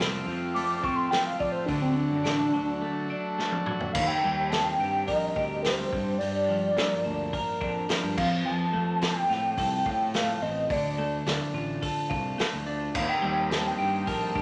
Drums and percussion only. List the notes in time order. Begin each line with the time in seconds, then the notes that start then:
0.00 snare, open hi-hat
0.56 open hi-hat
0.84 kick
1.12 snare, open hi-hat
1.40 kick
1.69 kick, open hi-hat
2.25 snare, open hi-hat
3.39 snare
3.52 high tom
3.66 mid tom
3.80 floor tom
3.95 kick, crash
4.52 snare, open hi-hat
5.07 kick, open hi-hat
5.36 kick
5.64 snare, open hi-hat
5.93 kick
6.21 open hi-hat
6.77 snare, open hi-hat
7.33 kick, open hi-hat
7.61 kick
7.89 snare, open hi-hat
8.18 kick, crash
9.02 snare, open hi-hat
9.31 snare
9.58 kick, open hi-hat
9.86 kick
10.14 snare, open hi-hat
10.70 kick, open hi-hat
11.27 snare, open hi-hat
11.82 kick, open hi-hat
12.11 kick
12.39 snare, open hi-hat
12.95 kick, crash
13.51 snare, open hi-hat
14.07 kick, open hi-hat
14.36 kick